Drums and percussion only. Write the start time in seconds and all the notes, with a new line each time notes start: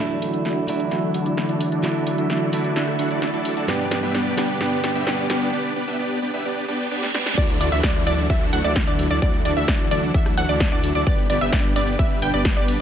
0.22 open hi-hat
0.34 closed hi-hat
0.45 snare, closed hi-hat
0.68 open hi-hat
0.80 closed hi-hat
0.91 snare, closed hi-hat
1.14 open hi-hat
1.26 closed hi-hat
1.37 snare, closed hi-hat
1.49 closed hi-hat
1.61 open hi-hat
1.72 closed hi-hat
1.84 snare, closed hi-hat
2.07 open hi-hat
2.18 closed hi-hat
2.30 snare, closed hi-hat
2.53 open hi-hat
2.64 closed hi-hat
2.76 snare, closed hi-hat
2.87 cross-stick
2.99 open hi-hat
3.11 closed hi-hat
3.22 snare, closed hi-hat
3.34 closed hi-hat
3.45 open hi-hat
3.57 closed hi-hat
3.68 snare, closed hi-hat
3.91 snare, open hi-hat
4.03 closed hi-hat
4.15 snare, closed hi-hat
4.38 snare, open hi-hat
4.49 closed hi-hat
4.61 snare, closed hi-hat
4.84 snare, open hi-hat
4.95 closed hi-hat
5.07 snare, closed hi-hat
5.18 closed hi-hat
5.30 snare, open hi-hat
5.41 closed hi-hat
7.03 snare
7.14 snare
7.26 snare
7.38 kick, closed hi-hat, crash
7.49 closed hi-hat
7.61 open hi-hat
7.72 closed hi-hat
7.83 kick, snare, closed hi-hat
7.95 closed hi-hat
8.07 open hi-hat
8.18 closed hi-hat
8.30 kick, closed hi-hat
8.41 closed hi-hat
8.53 open hi-hat
8.65 closed hi-hat
8.76 kick, snare, closed hi-hat
8.88 closed hi-hat
8.99 open hi-hat
9.11 closed hi-hat
9.22 kick, closed hi-hat
9.34 closed hi-hat
9.45 open hi-hat
9.57 closed hi-hat
9.68 kick, snare, closed hi-hat
9.80 closed hi-hat
9.91 open hi-hat
10.03 closed hi-hat
10.14 kick, closed hi-hat
10.26 cross-stick, closed hi-hat
10.37 open hi-hat
10.49 closed hi-hat
10.60 kick, snare, closed hi-hat
10.72 closed hi-hat
10.84 open hi-hat
10.95 closed hi-hat
11.07 kick, closed hi-hat
11.18 closed hi-hat
11.30 open hi-hat
11.41 closed hi-hat
11.53 kick, snare, closed hi-hat
11.64 closed hi-hat
11.76 open hi-hat
11.87 closed hi-hat
11.99 kick, closed hi-hat
12.11 closed hi-hat
12.22 open hi-hat
12.34 closed hi-hat
12.45 kick, snare, closed hi-hat
12.57 closed hi-hat
12.68 open hi-hat